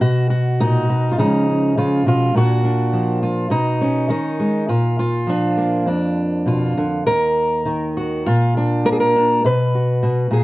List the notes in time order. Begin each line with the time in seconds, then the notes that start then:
0.01 B2 F#4
0.30 F#4
0.60 A#2 D#4
0.89 B2
1.12 F4
1.18 C#3 F3 G#3 C#4 D#4
1.49 C#4
1.77 C#3 F4
2.06 B2 F4
2.35 A#2 A#3 D4 F#4
2.64 D4
2.93 F3
3.23 F4
3.50 B2 D#4
3.81 C#4
4.09 D#3 D#4
4.40 G#3
4.68 A#2 F4
4.99 F4
5.27 F3 D4
5.57 A#3
5.86 F2 D4
6.46 B2 F4
6.77 D3
7.07 D#2 A#4
7.65 D#3
7.97 F#4
8.26 A#2 F4
8.57 D4
8.85 A#3 A#4
8.92 G#4
9.00 A#4
9.16 D4
9.45 B2 B4
9.75 F#4
10.03 B2
10.31 A#2 G#4